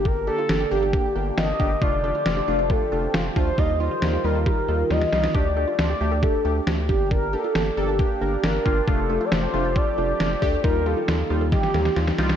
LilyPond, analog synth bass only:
\new Staff \with { instrumentName = "Analog synth bass" } { \clef bass \time 4/4 \key g \minor \tempo 4 = 136 g,,4 g,,8 g,,8. r16 g,,8 g,,8 g,,8 | f,,4 f,,8 f,,8. r16 f,,8 f,,8 d,8 | ees,4 ees,8 ees,8. r16 ees,8 ees,8 c,8 | d,4 d,8 d,8. r16 d,8 d,8 g,,8~ |
g,,4 g,,8 g,,8. r16 g,,8 g,,8 g,,8 | f,,4 f,,8 f,,8. r16 f,,8 f,,8 d,8 | ees,4 ees,8 ees,8. r16 ees,8 ees,8 c,8 | }